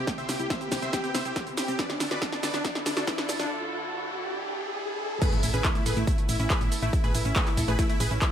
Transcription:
Already playing: string section C3 C4 E4 G4, riser
0.07 synth pluck C4, supersaw synth G4, kick, snare, closed hi-hat, shaker
0.18 fm bass C2, synth pluck C4, supersaw synth C5 E5, closed hi-hat, shaker
0.29 fm bass C2, supersaw synth G4, snare, open hi-hat, shaker
0.39 fm bass C2, synth pluck E4, supersaw synth G4, closed hi-hat, shaker
0.50 synth pluck C4, supersaw synth C5 E5, kick, snare, closed hi-hat, shaker
0.61 synth pluck C4, supersaw synth G4, closed hi-hat, shaker
0.72 fm bass C2, supersaw synth G4, synth pluck C5, kick, snare, open hi-hat, shaker
0.82 fm bass C2, synth pluck C4, supersaw synth C5 E5, closed hi-hat, shaker
0.93 synth pluck C4, supersaw synth G4, kick, snare, closed hi-hat, shaker
1.04 synth pluck C4, supersaw synth G4, closed hi-hat, shaker
1.14 fm bass C2, supersaw synth C5 E5, snare, open hi-hat, shaker
1.25 fm bass C2, synth pluck E4, supersaw synth G4, closed hi-hat, shaker
1.36 synth pluck C4, supersaw synth G4, kick, snare, closed hi-hat, shaker
1.47 fm bass C2, synth pluck C4, closed hi-hat, shaker
1.57 supersaw synth G4, synth pluck C5, snare, open hi-hat, shaker
1.68 fm bass C2, synth pluck C4, supersaw synth G4, closed hi-hat, shaker
1.79 string section D3 D4 E4 A4, synth pluck D4, supersaw synth B4 D5, kick, snare, closed hi-hat, shaker
1.89 fm bass D2, synth pluck D4, supersaw synth D4, snare, closed hi-hat, shaker
2.00 fm bass D2, supersaw synth D4, snare, open hi-hat, shaker
2.11 fm bass D2, synth pluck F#4, supersaw synth B4 D5, snare, closed hi-hat, shaker
2.22 supersaw synth D4, synth pluck D4, kick, snare, closed hi-hat, shaker
2.32 supersaw synth D4, synth pluck D4, snare, closed hi-hat, shaker
2.43 fm bass D2, supersaw synth B4 D5, synth pluck D5, snare, open hi-hat, shaker
2.54 fm bass D2, supersaw synth D4, synth pluck D4, snare, closed hi-hat, shaker
2.64 supersaw synth D4, synth pluck D4, kick, snare, closed hi-hat, shaker
2.75 synth pluck D4, snare, closed hi-hat, shaker
2.86 fm bass D2, supersaw synth D4, snare, open hi-hat, shaker
2.97 fm bass D2, supersaw synth D4, synth pluck F#4, snare, closed hi-hat, shaker
3.07 synth pluck D4, supersaw synth B4 D5, kick, snare, closed hi-hat, shaker
3.18 fm bass D2, supersaw synth D4, synth pluck D4, snare, closed hi-hat, shaker
3.29 synth pluck D5, snare, open hi-hat, shaker
3.39 fm bass D2, supersaw synth D4, synth pluck D4, snare, closed hi-hat, shaker
5.22 synth pluck A3 B4, string section A3 B3 E4, supersaw synth G#4 B4, kick, closed hi-hat, crash, impact, shaker
5.32 fm bass A1, synth pluck A3 E4, supersaw synth E4, closed hi-hat, shaker
5.43 fm bass A1, supersaw synth E4, synth pluck E4, open hi-hat, shaker
5.54 fm bass A1, synth pluck C#4 B4, supersaw synth G#4 B4, closed hi-hat, shaker
5.64 synth pluck A3 E4, supersaw synth E4, kick, clap, closed hi-hat, shaker
5.75 synth pluck A3 E4, supersaw synth E4, closed hi-hat, shaker
5.86 fm bass A1, supersaw synth G#4 B4, synth pluck A4 B4, open hi-hat, shaker
5.97 fm bass A1, synth pluck A3 E4, supersaw synth E4, closed hi-hat, shaker
6.07 synth pluck A3 E4, supersaw synth E4, kick, closed hi-hat, shaker
6.18 synth pluck A3, closed hi-hat, shaker
6.29 fm bass A1, supersaw synth E4, synth pluck E4, open hi-hat, shaker
6.39 fm bass A1, synth pluck C#4 E4, supersaw synth E4, closed hi-hat, shaker
6.50 synth pluck A3 B4, supersaw synth G#4 B4, kick, clap, closed hi-hat, shaker
6.61 fm bass A1, synth pluck A3 E4, supersaw synth E4, closed hi-hat, shaker
6.72 synth pluck A4, open hi-hat, shaker
6.82 fm bass A1, synth pluck A3 E4, supersaw synth E4, closed hi-hat, shaker
6.93 synth pluck A3 E4, supersaw synth E4, kick, closed hi-hat, shaker
7.04 fm bass A1, synth pluck A3 B4, supersaw synth G#4 B4, closed hi-hat, shaker
7.15 fm bass A1, supersaw synth E4, synth pluck E4, open hi-hat, shaker
7.25 fm bass A1, synth pluck C#4 E4, supersaw synth E4, closed hi-hat, shaker
7.36 synth pluck A3 B4, supersaw synth G#4 B4, kick, clap, closed hi-hat, shaker
7.47 synth pluck A3 E4, supersaw synth E4, clap, closed hi-hat, shaker
7.57 fm bass A1, supersaw synth E4, synth pluck E4 A4, kick, open hi-hat, shaker
7.68 fm bass A1, synth pluck A3 B4, supersaw synth G#4 B4, closed hi-hat, shaker
7.79 synth pluck A3 E4, supersaw synth E4, kick, closed hi-hat, shaker
7.90 synth pluck A3 E4, supersaw synth E4, closed hi-hat, shaker
8.00 fm bass A1, supersaw synth G#4 B4, synth pluck B4, open hi-hat, shaker
8.11 fm bass A1, synth pluck C#4 E4, supersaw synth E4, closed hi-hat, shaker
8.22 synth pluck A3, supersaw synth E4, kick, clap, closed hi-hat, shaker

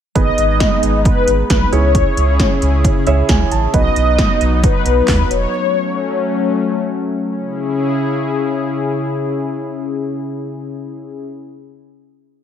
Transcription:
0.15 analog synth bass G#1, analog synth pad G#3 B3 D#4, grand piano B3 D#4 G#4 B4, analog polysynth D#5, kick, closed hi-hat
0.38 analog synth bass G#1, closed hi-hat
0.60 kick, snare, closed hi-hat
0.83 analog synth bass G#1, closed hi-hat
1.05 analog polysynth B4, kick, closed hi-hat
1.28 analog synth bass G#1, closed hi-hat
1.50 analog synth bass B1, analog polysynth B4, kick, snare, closed hi-hat
1.72 analog synth bass C#2, analog synth pad C#3 C#4 E4 G#4, grand piano C#4 E4 G#4 C#5, analog polysynth C#5, closed hi-hat
1.95 kick, closed hi-hat
2.17 analog synth bass C#2, closed hi-hat
2.40 kick, snare, closed hi-hat
2.62 analog synth bass C#2, closed hi-hat
2.85 kick, closed hi-hat
3.07 analog synth bass C#2, grand piano C#4 E4 G#4 C#5 E5, closed hi-hat
3.29 analog synth bass C#2, grand piano G#5, kick, snare, closed hi-hat
3.52 analog synth bass A1, grand piano A5, closed hi-hat
3.74 analog synth bass B1, analog synth pad F#3 B3 D#4, grand piano B3 D#4 F#4 B4, analog polysynth D#5, kick, closed hi-hat
3.96 analog synth bass B1, closed hi-hat
4.18 kick, snare, closed hi-hat
4.41 analog synth bass B1, closed hi-hat
4.63 analog polysynth B4, kick, closed hi-hat
4.86 analog synth bass B1, closed hi-hat
5.08 analog synth bass D#2, analog polysynth B4, kick, snare, clap, closed hi-hat
5.30 analog synth bass E1, analog polysynth C#5, closed hi-hat
5.53 analog synth pad F#3 A3 C#4
7.32 analog synth pad C#3 C#4 E4 G#4

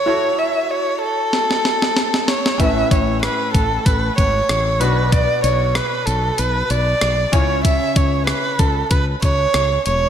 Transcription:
Already playing: erhu C#5
0.06 grand piano E4 F#4 A4 C#5
0.38 erhu E5
0.70 erhu C#5
1.01 erhu A4
1.33 snare
1.51 snare
1.65 snare
1.82 snare
1.97 snare
2.14 snare
2.27 erhu C#5, snare
2.46 snare
2.58 fretless electric bass A1, grand piano A2 C#4 E4 A4 B4, erhu E5, kick, closed hi-hat
2.91 fretless electric bass A1, erhu C#5, kick, closed hi-hat
3.22 erhu B4, cross-stick, closed hi-hat
3.54 fretless electric bass A1, erhu A4, kick, closed hi-hat
3.85 fretless electric bass A1, erhu B4, kick, closed hi-hat
4.16 fretless electric bass G#1, erhu C#5, kick, closed hi-hat
4.49 fretless electric bass A1, cross-stick, closed hi-hat
4.79 fretless electric bass B1, grand piano B2 B3 D4 F#4 B4, erhu B4, closed hi-hat
5.12 erhu D5, kick, closed hi-hat
5.44 fretless electric bass B1, erhu C#5, closed hi-hat
5.75 erhu B4, cross-stick, closed hi-hat
6.06 fretless electric bass B1, erhu A4, closed hi-hat
6.38 fretless electric bass B1, erhu B4, closed hi-hat
6.70 fretless electric bass B1, erhu D5, closed hi-hat
7.01 fretless electric bass B1, cross-stick, closed hi-hat
7.32 fretless electric bass C#2, grand piano C#3 C#4 E4 C#5 G#5, erhu C#5, kick, closed hi-hat
7.64 erhu E5, kick, closed hi-hat
7.96 fretless electric bass C#2, erhu C#5, kick, closed hi-hat
8.27 erhu B4, cross-stick, closed hi-hat
8.59 fretless electric bass C#2, erhu A4, kick, closed hi-hat
8.90 fretless electric bass C#2, erhu B4, kick, closed hi-hat
9.22 fretless electric bass C#2, erhu C#5, kick, closed hi-hat
9.54 fretless electric bass C#2, cross-stick, closed hi-hat
9.85 fretless electric bass E1, erhu C#5, closed hi-hat

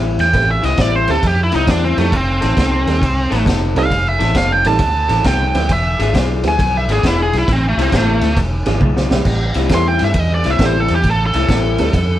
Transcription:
Already playing: fingered electric bass A1, clean electric guitar A2 G3 C4 E4
0.19 fingered electric bass E2, lead electric guitar G5, snare, ride
0.33 fingered electric bass A1, honky-tonk piano A3 C4 E4 G4 B4, kick, snare, ride
0.51 lead electric guitar E5
0.62 fingered electric bass C2, clean electric guitar A2 G3 C4 E4, lead electric guitar D#5, snare, ride
0.77 fingered electric bass A1, clean electric guitar A2 G3 C4 E4, lead electric guitar D5, kick, snare, ride
0.96 lead electric guitar C5
1.08 fingered electric bass D2, honky-tonk piano A3 C4 E4 G4 B4, lead electric guitar A4, snare, ride
1.23 fingered electric bass F2, lead electric guitar G4, kick, snare, ride
1.44 lead electric guitar E4
1.51 fingered electric bass C2, clean electric guitar A2 G3 C4 E4, snare, ride
1.56 lead electric guitar D#4
1.67 fingered electric bass E2, clean electric guitar A2 G3 C4 E4, lead electric guitar D4, kick, snare, ride
1.84 lead electric guitar C4
1.98 fingered electric bass F2, honky-tonk piano G3 C4 D#4 F4 A4, lead electric guitar A3, snare, ride
2.12 fingered electric bass F1, lead electric guitar C4, kick, ride
2.41 fingered electric bass A1, clean electric guitar F3 C4 D#4 A4, snare, ride
2.56 fingered electric bass C2, clean electric guitar F3 C4 D#4 A4, kick, snare, ride
2.87 fingered electric bass D#2, honky-tonk piano G3 C4 D#4 F4 A4, snare, ride
3.01 fingered electric bass C2, kick, ride
3.30 fingered electric bass A1, clean electric guitar F3 C4 D#4 A4, snare, ride
3.45 fingered electric bass F1, clean electric guitar F3 C4 D#4 A4, kick, snare, ride
3.75 fingered electric bass C2, honky-tonk piano G3 C4 D#4 F4 A4, lead electric guitar F5, snare, ride
3.90 fingered electric bass F1, kick, snare, ride
4.09 lead electric guitar E5
4.19 fingered electric bass A1, clean electric guitar F3 C4 D#4 A4, snare, ride
4.34 fingered electric bass F1, clean electric guitar F3 C4 D#4 A4, lead electric guitar F5, kick, snare, ride
4.52 lead electric guitar G5
4.65 fingered electric bass A1, honky-tonk piano G3 C4 D#4 F4 A4, lead electric guitar A5, snare, ride
4.79 fingered electric bass D2, kick, snare, ride
5.09 fingered electric bass A1, clean electric guitar F3 C4 D#4 A4, snare, ride
5.23 fingered electric bass C2, clean electric guitar F3 C4 D#4 A4, lead electric guitar G5, kick, snare, ride
5.54 fingered electric bass D2, honky-tonk piano F3 B3 D4 E4 B4, snare, ride
5.69 fingered electric bass E1, lead electric guitar E5, kick, snare, ride
5.99 fingered electric bass G#1, clean electric guitar E3 D4 F4 G#4, snare, ride
6.14 fingered electric bass B1, clean electric guitar E3 D4 F4 G#4, kick, snare, ride
6.43 fingered electric bass D2, honky-tonk piano F3 B3 D4 E4 G#4, snare, ride
6.48 lead electric guitar G#5
6.59 fingered electric bass B1, kick, snare, ride
6.77 lead electric guitar E5
6.88 fingered electric bass G#1, clean electric guitar E3 D4 F4 G#4, snare, ride
6.92 lead electric guitar G#4
7.03 fingered electric bass E1, clean electric guitar E3 D4 F4 G#4, lead electric guitar E4, kick, snare, ride
7.22 lead electric guitar G#4
7.33 fingered electric bass B1, snare, ride
7.38 lead electric guitar E4
7.48 fingered electric bass A1, kick, snare, ride
7.53 lead electric guitar C4
7.69 lead electric guitar A3
7.77 fingered electric bass C2, clean electric guitar A2 G3 C4 E4, snare, ride
7.82 lead electric guitar C4
7.92 fingered electric bass A1, clean electric guitar A2 G3 C4 E4, kick, snare, ride
7.97 lead electric guitar A3
8.21 fingered electric bass D2, snare, ride
8.36 fingered electric bass E1, kick, snare, ride
8.66 fingered electric bass G#1, clean electric guitar E3 G#3 D4 F4, honky-tonk piano F3 B3 D4 E4 G#4, snare, ride
8.81 fingered electric bass B1, clean electric guitar E3 G#3 D4 F4, kick, high tom
8.97 snare
9.10 fingered electric bass B1, honky-tonk piano G3 B3 C4 E4 G4, snare
9.25 fingered electric bass A1, kick, snare, crash
9.54 fingered electric bass C2, clean electric guitar A2 G3 C4 E4, snare, ride
9.69 fingered electric bass E2, clean electric guitar A2 G3 C4 E4, honky-tonk piano G3 B3 C4 E4 A4, kick, snare, ride
9.75 lead electric guitar C6
9.88 lead electric guitar G5
9.99 fingered electric bass G2, snare, ride
10.04 lead electric guitar E5
10.14 fingered electric bass E2, kick, ride
10.20 lead electric guitar D#5
10.35 lead electric guitar D5
10.44 fingered electric bass C2, clean electric guitar A2 G3 C4 E4, snare, ride
10.51 lead electric guitar E5
10.59 fingered electric bass A1, clean electric guitar A2 G3 C4 E4, honky-tonk piano G3 B3 C4 E4 A4, kick, snare, ride
10.66 lead electric guitar C5
10.80 lead electric guitar A4
10.88 fingered electric bass E2, snare, ride
10.95 lead electric guitar G4
11.04 fingered electric bass A1, kick, snare, ride
11.11 lead electric guitar A4
11.27 lead electric guitar A4
11.33 fingered electric bass C2, clean electric guitar A2 G3 C4 E4, snare, ride
11.49 fingered electric bass A1, clean electric guitar A2 G3 C4 E4, kick, snare, ride
11.78 fingered electric bass D2, honky-tonk piano G3 B3 C4 E4 A4, snare, ride
11.93 fingered electric bass F2, kick, snare, ride

